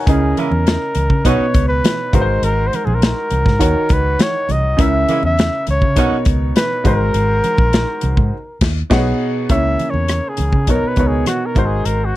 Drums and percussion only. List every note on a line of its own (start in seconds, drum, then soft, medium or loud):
0.07 kick loud
0.07 closed hi-hat medium
0.37 closed hi-hat medium
0.37 muted conga soft
0.37 high conga medium
0.52 high conga medium
0.67 snare loud
0.67 closed hi-hat medium
0.67 muted conga soft
0.95 closed hi-hat medium
0.95 muted conga soft
0.95 high conga medium
1.10 kick medium
1.10 low conga medium
1.25 kick medium
1.25 closed hi-hat loud
1.25 muted conga soft
1.54 kick loud
1.54 closed hi-hat medium
1.54 muted conga soft
1.84 snare loud
1.84 closed hi-hat medium
1.84 muted conga soft
1.84 high conga medium
2.13 kick loud
2.13 closed hi-hat medium
2.13 high conga medium
2.13 low conga medium
2.43 closed hi-hat medium
2.43 muted conga soft
2.73 closed hi-hat medium
2.73 high conga medium
2.87 high conga medium
3.02 snare loud
3.02 closed hi-hat medium
3.02 muted conga soft
3.31 closed hi-hat medium
3.31 high conga medium
3.46 kick loud
3.46 snare soft
3.46 low conga medium
3.61 kick medium
3.61 closed hi-hat loud
3.89 kick medium
3.89 closed hi-hat medium
3.89 muted conga soft
4.19 snare loud
4.19 closed hi-hat medium
4.19 muted conga soft
4.19 high conga medium
4.49 closed hi-hat medium
4.49 muted conga soft
4.49 high conga medium
4.49 low conga medium
4.79 kick loud
4.79 closed hi-hat medium
4.79 muted conga soft
5.09 closed hi-hat medium
5.09 muted conga soft
5.09 high conga medium
5.23 high conga medium
5.37 snare loud
5.37 closed hi-hat medium
5.37 muted conga soft
5.67 closed hi-hat medium
5.67 high conga medium
5.82 kick medium
5.82 low conga medium
5.96 kick medium
5.96 closed hi-hat loud
5.96 muted conga soft
6.25 kick loud
6.25 closed hi-hat medium
6.25 muted conga soft
6.56 snare loud
6.56 closed hi-hat loud
6.56 high conga medium
6.85 kick medium
6.85 closed hi-hat medium
6.85 muted conga soft
6.85 high conga medium
6.85 low conga medium
7.14 closed hi-hat medium
7.14 muted conga soft
7.44 closed hi-hat medium
7.44 muted conga soft
7.44 high conga medium
7.58 kick loud
7.58 high conga medium
7.73 snare loud
7.73 closed hi-hat medium
7.73 muted conga soft
8.01 closed hi-hat medium
8.01 high conga medium
8.17 kick loud
8.17 low conga medium
8.61 kick loud
8.61 snare loud
8.61 crash medium
8.90 kick loud
8.90 snare loud
8.90 crash medium
9.49 kick loud
9.49 closed hi-hat medium
9.49 muted conga soft
9.79 closed hi-hat medium
9.79 muted conga soft
9.79 high conga medium
9.94 high conga medium
10.08 cross-stick loud
10.08 closed hi-hat medium
10.37 closed hi-hat medium
10.37 muted conga soft
10.37 high conga medium
10.52 kick medium
10.52 low conga medium
10.67 kick medium
10.67 closed hi-hat medium
10.67 muted conga soft
10.96 kick medium
10.96 closed hi-hat medium
10.96 muted conga soft
11.26 cross-stick medium
11.26 closed hi-hat medium
11.26 high conga medium
11.55 kick medium
11.55 closed hi-hat medium
11.55 high conga medium
11.55 low conga medium
11.85 closed hi-hat medium